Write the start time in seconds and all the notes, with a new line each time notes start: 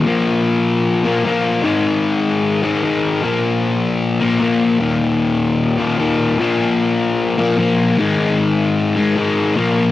0.04 A#2 F3 A#3
1.04 A#2 F3 A#3
1.23 A#2 F3 A#3
1.63 G#2 D#3 G#3
2.63 G#2 D#3 G#3
2.82 G#2 D#3 G#3
3.22 A#2 F3 A#3
4.20 A#2 F3 A#3
4.39 A#2 F3 A#3
4.79 D#2 A#2 D#3
5.78 D#2 A#2 D#3
5.98 D#2 A#2 D#3
6.38 A#2 F3 A#3
7.38 A#2 F3 A#3
7.57 A#2 F3 A#3
7.97 G#2 D#3 G#3
8.96 G#2 D#3 G#3
9.16 G#2 D#3 G#3
9.55 A#2 F3 A#3